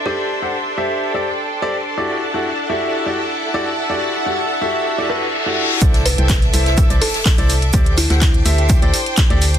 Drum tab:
HH |----------------|----------------|----------------|xxoxxxoxxxoxxxox|
SH |----------------|----------------|----------------|x-x-x-x-x---x-x-|
CP |----------------|----------------|----------------|----x-------x---|
SD |----------------|----------------|----------------|-oo-oo-o---oo---|
BD |----------------|----------------|----------------|o---o---o---o---|

HH |xxoxxxoxxxoxxxox|
SH |x-x-x-x-x-x-x-x-|
CP |----x-------x---|
SD |--ooo-------o---|
BD |o---o---o---o---|